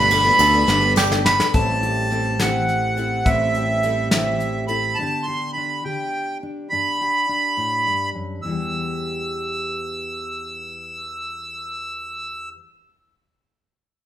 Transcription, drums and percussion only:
0.11 ride, tambourine
0.25 tambourine
0.39 ride, tambourine
0.68 snare
0.81 tambourine
0.96 snare, tambourine
1.12 snare
1.26 snare
1.40 snare
1.54 kick, closed hi-hat
1.83 closed hi-hat
2.11 closed hi-hat
2.39 snare, closed hi-hat
2.68 closed hi-hat
2.97 closed hi-hat
3.26 kick, closed hi-hat
3.54 closed hi-hat
3.83 closed hi-hat
4.11 snare, closed hi-hat
4.40 closed hi-hat
4.68 closed hi-hat

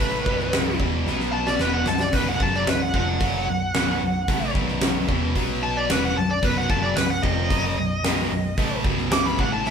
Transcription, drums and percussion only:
0.00 kick, open hi-hat
0.26 kick
0.40 snare
0.53 snare, open hi-hat
0.80 kick
1.07 snare
1.20 snare
1.47 snare
1.59 snare
1.86 snare
1.99 snare
2.13 kick, open hi-hat
2.40 kick
2.54 snare
2.67 snare, open hi-hat
2.94 kick
3.20 kick, open hi-hat
3.74 snare, open hi-hat
4.28 kick, open hi-hat
4.55 kick
4.68 snare
4.81 snare, open hi-hat
5.09 kick
5.35 kick, open hi-hat
5.90 snare, open hi-hat
6.43 kick, open hi-hat
6.70 kick
6.96 snare, open hi-hat
7.23 kick
7.50 kick, open hi-hat
8.04 snare, open hi-hat
8.58 kick, open hi-hat
8.84 kick
8.98 snare
9.11 snare, open hi-hat
9.39 kick
9.66 snare

